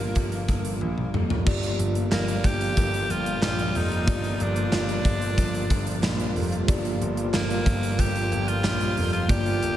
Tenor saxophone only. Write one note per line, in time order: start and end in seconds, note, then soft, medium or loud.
0.00 1.11 A#3 medium
2.13 2.47 A#3 loud
2.46 3.12 G4 loud
3.11 3.43 F4 loud
3.44 3.78 F4 loud
3.77 4.44 D#4 loud
4.42 4.74 D4 medium
4.75 6.33 D4 loud
7.35 8.02 A#3 loud
8.00 8.50 G4 loud
8.48 9.12 F4 loud
9.13 9.31 F4 medium
9.29 9.77 G4 loud